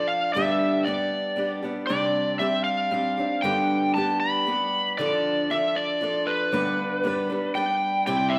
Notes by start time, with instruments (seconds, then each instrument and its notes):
Already playing: steel-string acoustic guitar F3 D4 F4 A4
0.07 electric slide guitar F5
0.34 steel-string acoustic guitar G2 D3 G3 B3 D4 G4, electric slide guitar E5
0.85 steel-string acoustic guitar G3 B3 D4 G4, electric slide guitar D5
1.36 steel-string acoustic guitar G3 B3 D4 G4
1.62 steel-string acoustic guitar G3 B3 D4 G4
1.87 steel-string acoustic guitar C3 G3 C4 D4 G4, electric slide guitar D5
2.39 steel-string acoustic guitar G3 C4 D4 G4, electric slide guitar E5
2.64 electric slide guitar F5
2.91 steel-string acoustic guitar G3 C4 D4 G4
3.18 steel-string acoustic guitar C4 D4 G4
3.42 steel-string acoustic guitar G2 D3 G3 B3 D4 G4, electric slide guitar G5
3.94 steel-string acoustic guitar G3 B3 D4 G4, electric slide guitar A5
4.20 electric slide guitar B5
4.47 steel-string acoustic guitar G3 B3 D4 G4
4.98 steel-string acoustic guitar D3 F3 D4 F4 A4, electric slide guitar D5
5.50 steel-string acoustic guitar F3 D4 F4 A4, electric slide guitar E5
5.76 electric slide guitar D5
6.01 steel-string acoustic guitar F3 D4 F4 A4
6.27 electric slide guitar B4
6.52 steel-string acoustic guitar G2 D3 G3 B3 D4 B4
7.04 steel-string acoustic guitar G3 B3 D4 B4
7.30 steel-string acoustic guitar G3 B3 D4 B4
7.55 steel-string acoustic guitar G3 B3 D4 B4, electric slide guitar G5
8.07 steel-string acoustic guitar C3 G3 C4 E4 G4, electric slide guitar G5
8.30 electric slide guitar E5